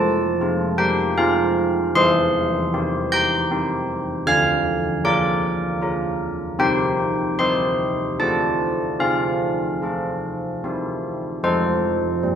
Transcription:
0.00 0.39 F3 medium
0.00 0.76 A4 medium
0.00 0.75 A5 loud
0.41 1.13 C4 medium
0.41 1.14 F4 medium
0.78 1.15 G4 medium
0.78 1.15 G5 loud
1.18 1.93 C4 medium
1.18 1.93 F4 medium
1.18 1.93 F5 loud
1.95 2.72 E3 medium
1.95 3.10 C5 loud
1.95 3.09 C6 loud
2.74 3.48 C4 medium
2.74 3.48 G4 medium
3.12 4.24 G5 loud
3.12 4.23 G6 loud
3.51 4.24 C4 medium
3.51 4.24 G4 medium
4.27 5.02 D3 medium
4.27 5.01 F5 medium
4.27 5.02 F6 loud
5.04 5.78 F4 medium
5.04 5.78 A#4 medium
5.04 6.18 D5 medium
5.04 6.17 D6 medium
5.81 6.56 F4 medium
5.81 6.56 A#4 medium
6.59 7.37 C4 medium
6.59 7.36 G4 medium
6.59 7.36 G5 loud
7.39 8.15 E4 soft
7.39 8.15 G4 medium
7.39 8.16 C5 medium
7.39 8.16 C6 medium
8.19 8.99 D4 medium
8.19 8.97 F4 soft
8.19 8.98 A4 medium
8.19 8.98 A5 medium
9.00 9.80 C4 medium
9.00 9.81 F4 medium
9.00 10.59 F5 medium
9.82 10.59 F4 soft
9.82 10.60 A4 soft
10.64 11.42 C4 medium
10.64 11.40 E4 soft
10.64 11.41 G4 soft
11.43 12.06 F3 medium
11.43 12.35 A4 medium
11.43 12.35 C5 loud
12.23 12.35 G3 medium

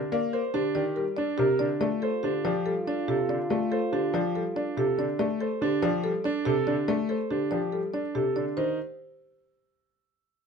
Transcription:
0.00 0.18 D3 medium
0.00 0.19 D4 medium
0.00 0.11 D5 medium
0.12 0.40 A#3 loud
0.12 0.40 D5 loud
0.33 0.61 A#4 medium
0.33 0.61 C5 medium
0.54 0.82 D3 medium
0.54 0.82 D4 loud
0.54 0.82 G4 medium
0.75 1.03 D#3 loud
0.75 1.03 G4 medium
0.75 1.03 D5 medium
0.96 1.24 G3 medium
0.96 1.24 A#4 medium
1.17 1.45 D4 loud
1.17 1.45 D5 medium
1.38 1.66 C3 loud
1.38 1.66 G4 loud
1.38 1.67 A#4 medium
1.59 1.88 D3 medium
1.59 1.88 D4 medium
1.59 1.80 D5 medium
1.81 2.09 A3 medium
1.81 4.94 F4 medium
1.81 2.09 D5 loud
2.02 2.30 A4 medium
2.02 2.30 C5 medium
2.23 2.51 D3 medium
2.23 2.51 D4 loud
2.23 2.51 G4 medium
2.45 2.72 F3 loud
2.45 2.72 G4 medium
2.45 2.72 D5 medium
2.65 2.93 G3 medium
2.65 2.93 A4 medium
2.87 3.15 D4 medium
2.87 3.15 D5 medium
3.08 3.36 C3 medium
3.08 3.36 G4 medium
3.08 3.36 A4 medium
3.29 3.57 D3 medium
3.29 3.57 D4 medium
3.29 3.49 D5 medium
3.50 3.78 A3 medium
3.50 3.78 D5 medium
3.72 3.99 A4 medium
3.72 3.99 C5 medium
3.92 4.20 D3 medium
3.92 4.20 D4 medium
3.92 4.20 G4 medium
4.14 4.41 F3 loud
4.14 4.41 G4 medium
4.14 4.42 D5 medium
4.35 4.62 G3 medium
4.35 4.63 A4 medium
4.56 4.83 D4 medium
4.56 4.84 D5 medium
4.77 5.05 C3 medium
4.77 5.05 G4 medium
4.77 5.05 A4 medium
4.98 5.26 D3 medium
4.98 5.26 D4 medium
4.98 5.18 D5 medium
5.19 5.47 A3 medium
5.19 5.47 D5 loud
5.41 5.68 A4 medium
5.41 5.68 C5 medium
5.61 5.89 D3 medium
5.61 5.89 D4 loud
5.61 5.89 G4 medium
5.82 6.10 F3 loud
5.82 6.10 G4 medium
5.82 6.10 D5 medium
6.04 6.31 G3 medium
6.04 6.31 A4 medium
6.24 6.53 D4 loud
6.24 6.52 D5 medium
6.45 6.74 C3 loud
6.45 6.73 G4 loud
6.45 6.74 A4 loud
6.67 6.95 D3 medium
6.67 6.95 D4 medium
6.67 6.87 D5 medium
6.88 7.16 A3 loud
6.88 7.16 D5 medium
7.09 7.37 A4 medium
7.09 7.37 C5 medium
7.31 7.58 D3 medium
7.31 7.58 D4 medium
7.31 7.58 G4 medium
7.51 7.79 F3 medium
7.51 7.79 G4 medium
7.51 7.79 D5 medium
7.72 8.00 G3 medium
7.72 8.00 A4 medium
7.94 8.21 D4 medium
7.94 8.21 D5 medium
8.15 8.43 C3 medium
8.15 8.43 G4 medium
8.15 8.43 A4 medium
8.36 8.64 D3 medium
8.36 8.64 D4 medium
8.36 8.64 D5 medium
8.57 8.77 D#3 medium
8.57 8.77 D#4 loud
8.57 8.77 C5 medium

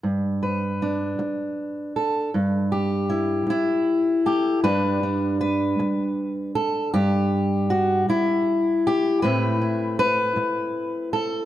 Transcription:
0.03 1.18 G2 medium
0.43 1.95 B4 soft
0.82 2.29 D4 soft
1.19 muted steel-string acoustic guitar stroke medium
1.96 2.29 A4 soft
2.34 3.45 G2 medium
2.72 4.25 G4 medium
3.10 3.49 E4 soft
3.47 4.64 E4 medium
3.47 muted steel-string acoustic guitar stroke medium
4.26 4.63 G4 medium
4.26 4.59 A4 soft
4.63 5.79 G2 medium
4.63 9.24 G3 soft
4.63 5.02 D4 soft
4.63 5.39 B4 medium
5.03 6.90 D4 soft
5.41 6.55 B4 medium
5.79 muted steel-string acoustic guitar stroke medium
6.55 6.93 A4 medium
6.94 8.07 G2 medium
6.94 8.47 G4 medium
7.70 8.09 F#4 medium
8.09 9.24 E4 medium
8.09 muted steel-string acoustic guitar stroke medium
8.87 9.22 G4 medium
9.22 10.35 A2 medium
9.22 11.45 A3 soft
9.22 11.45 C4 soft
9.22 9.60 E4 soft
9.22 9.98 B4 medium
9.61 11.45 E4 soft
9.99 11.12 B4 medium
10.36 muted steel-string acoustic guitar stroke medium
11.13 11.45 A4 medium

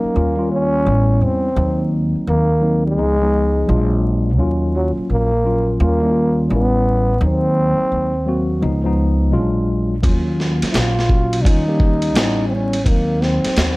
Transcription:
0.00 0.15 F#3 medium
0.00 0.14 A#3 medium
0.00 0.51 A#3 medium
0.00 0.14 C#4 medium
0.00 0.16 D#4 medium
0.00 muted upright bass stroke soft
0.14 0.83 D#2 medium
0.14 0.34 G3 medium
0.14 0.34 A#3 medium
0.14 0.34 C#4 medium
0.14 0.35 F4 medium
0.37 0.83 G3 medium
0.37 0.85 A#3 medium
0.37 0.85 C#4 medium
0.37 0.86 F4 medium
0.52 1.25 C#4 loud
0.85 1.20 A1 medium
0.85 1.47 G3 medium
0.85 1.47 B3 medium
0.85 1.47 C#4 medium
0.85 1.48 E4 medium
1.21 1.55 E2 medium
1.21 1.93 C4 medium
1.56 2.12 D#2 loud
1.56 2.47 F#3 medium
1.56 2.47 A#3 medium
1.56 2.48 C4 medium
1.56 2.48 D#4 medium
2.15 muted upright bass stroke soft
2.27 2.98 D#2 medium
2.27 2.82 A#3 medium
2.61 2.97 F#3 medium
2.61 2.97 A#3 medium
2.61 2.98 C4 medium
2.61 2.98 D#4 medium
2.87 4.00 G#3 loud
2.97 3.65 C#2 loud
2.97 3.16 F3 medium
2.97 3.17 G#3 medium
2.97 3.17 B3 medium
2.97 3.17 D#4 medium
3.20 3.68 F3 medium
3.20 3.67 G#3 medium
3.20 3.69 B3 medium
3.20 3.69 D#4 medium
3.67 4.39 A#1 loud
3.67 4.29 F#3 medium
3.67 4.30 G#3 medium
3.67 4.30 D4 medium
3.67 4.30 F4 medium
4.38 4.95 D#2 loud
4.38 5.29 F#3 medium
4.38 5.30 A#3 medium
4.38 5.30 C#4 medium
4.38 5.30 F4 medium
4.76 4.91 F#3 medium
4.98 muted upright bass stroke soft
5.10 5.77 A#1 medium
5.10 5.77 A#3 medium
5.44 5.80 F#3 medium
5.44 5.79 A#3 medium
5.44 5.79 C#4 medium
5.44 5.81 F4 medium
5.79 6.47 D#2 loud
5.79 5.99 G3 medium
5.79 5.99 A#3 medium
5.79 6.48 A#3 medium
5.79 5.99 C#4 medium
5.79 6.00 F4 medium
6.03 6.48 G3 medium
6.03 6.51 A#3 medium
6.03 6.50 C#4 medium
6.03 6.08 E4 medium
6.11 6.55 F4 medium
6.50 7.18 A1 medium
6.50 7.12 G3 medium
6.50 7.12 B3 medium
6.50 7.12 C#4 medium
6.50 7.13 E4 medium
6.54 7.19 B3 medium
7.20 7.77 D#2 loud
7.20 8.12 F#3 medium
7.20 8.12 A#3 medium
7.20 8.13 C4 medium
7.20 8.13 D#4 medium
7.25 8.60 C4 loud
7.80 muted upright bass stroke soft
7.92 8.59 D#2 medium
8.26 8.62 F#3 medium
8.26 8.62 A#3 medium
8.26 8.63 C4 medium
8.26 8.63 F#4 medium
8.61 9.33 C#2 medium
8.61 8.81 F3 medium
8.61 8.81 G#3 medium
8.61 8.81 B3 medium
8.61 8.82 D#4 medium
8.84 9.32 F3 medium
8.84 9.31 G#3 medium
8.84 9.33 B3 medium
8.84 9.33 D#4 loud
9.31 10.00 A#1 loud
9.31 9.94 F#3 medium
9.31 9.94 G#3 medium
9.31 9.42 C#4 medium
9.31 9.95 F4 loud
9.39 9.98 D4 medium
10.02 10.59 D#2 loud
10.02 10.11 F3 medium
10.02 10.94 A#3 medium
10.02 10.95 C#4 medium
10.02 10.95 F4 medium
10.02 kick medium
10.02 ride medium
10.08 10.97 F#3 medium
10.40 snare soft
10.62 muted upright bass stroke soft
10.62 snare soft
10.62 ride medium
10.71 11.45 A#1 medium
10.71 10.79 E4 medium
10.71 hi-hat pedal medium
10.71 ride medium
10.75 11.44 F4 medium
10.75 snare medium
10.99 snare soft
11.08 11.44 F#3 medium
11.08 11.43 A#3 medium
11.08 11.44 C#4 medium
11.08 11.45 F#4 medium
11.08 kick medium
11.33 ride medium
11.42 12.15 D#2 medium
11.42 11.63 G3 medium
11.42 11.63 A#3 medium
11.42 11.64 C#4 medium
11.42 11.49 D4 medium
11.42 11.64 F4 medium
11.42 kick medium
11.42 ride medium
11.48 12.47 D#4 medium
11.67 12.13 G3 medium
11.67 12.15 A#3 medium
11.67 12.14 C#4 medium
11.67 12.16 G4 medium
11.80 kick medium
12.02 ride soft
12.14 12.82 A1 medium
12.14 12.76 G3 medium
12.14 12.77 B3 medium
12.14 12.77 C#4 medium
12.14 12.77 E4 medium
12.14 snare loud
12.14 hi-hat pedal soft
12.14 ride medium
12.48 12.55 C4 medium
12.54 12.86 C#4 medium
12.73 ride soft
12.84 13.41 D#2 medium
12.84 13.76 F#3 medium
12.84 13.76 A#3 medium
12.84 12.90 C4 medium
12.84 13.77 C4 medium
12.84 13.77 D#4 medium
12.84 kick loud
12.84 ride medium
12.88 13.25 A#3 medium
13.22 13.77 C4 medium
13.22 snare soft
13.44 muted upright bass stroke soft
13.44 snare soft
13.44 ride medium
13.56 13.77 D#2 medium
13.56 snare loud
13.56 hi-hat pedal medium
13.56 ride medium

